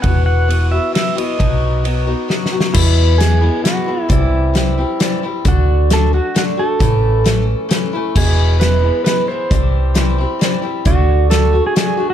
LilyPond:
<<
  \new Staff \with { instrumentName = "Pedal steel guitar" } { \time 3/4 \key b \mixolydian \tempo 4 = 133 fis''8 fis''4 e''8 e''8 dis''8~ | dis''2 r4 | \key e \mixolydian e'4 gis'4 fis'4 | e'2~ e'8 r8 |
fis'4 a'8 fis'8 fis'8 a'8~ | a'4. r4. | gis'4 b'4 b'8 c''8~ | c''2~ c''8 r8 |
fis'4 a'8. gis'16 r8. fis'16 | }
  \new Staff \with { instrumentName = "Steel-string acoustic guitar" } { \time 3/4 \key b \mixolydian <e, b, e b e' fis'>4 <e b e' fis'>8 <e b e' fis'>8 <e b e' fis'>8 <e b e' fis'>8 | <b, fis b dis' fis'>4 <fis b dis' fis'>8 <b dis' fis'>8 <fis b dis' fis'>8 <b dis' fis'>8 | \key e \mixolydian <e, b, e gis b e'>4 <e gis b e'>8 <e gis b e'>8 <e gis b e'>8 <e gis b e'>8 | <c e g c' e'>4 <e g c' e'>8 <g c' e'>8 <e g c' e'>8 <g c' e'>8 |
<d a d' fis'>4 <d a d' fis'>8 <a d' fis'>8 <d a d' fis'>8 <a d' fis'>8 | <a, e a cis' e'>4 <e a cis' e'>4 <e a cis' e'>8 <a cis' e'>8 | <e, b, e gis b e'>4 <e gis b e'>8 <e gis b e'>8 <e gis b e'>8 <e gis b e'>8 | <c e g c' e'>4 <e g c' e'>8 <g c' e'>8 <e g c' e'>8 <g c' e'>8 |
<d a d' fis'>4 <d a d' fis'>8 <a d' fis'>8 <d a d' fis'>8 <a d' fis'>8 | }
  \new Staff \with { instrumentName = "Picked electric bass" } { \clef bass \time 3/4 \key b \mixolydian e,,2 r4 | b,,2 r4 | \key e \mixolydian e,2 r4 | c,2 r4 |
d,2 r4 | a,,2 r4 | e,,2 r4 | c,2 r4 |
d,2 r4 | }
  \new DrumStaff \with { instrumentName = "Drums" } \drummode { \time 3/4 <bd cymr>4 cymr4 <cymr sn>8 cymr8 | <bd cymr>4 cymr4 \tuplet 3/2 { sn8 sn8 sn8 } | <cymc bd>4 <hh sn>4 <hh sn>4 | <hh bd>4 <hh sn>4 <hh sn>4 |
<hh bd>4 <hh sn>4 <hh sn>4 | <hh bd>4 <hh sn>4 <hh sn>4 | <cymc bd>4 <hh sn>4 <hh sn>4 | <hh bd>4 <hh sn>4 <hh sn>4 |
<hh bd>4 <hh sn>4 <hh sn>4 | }
>>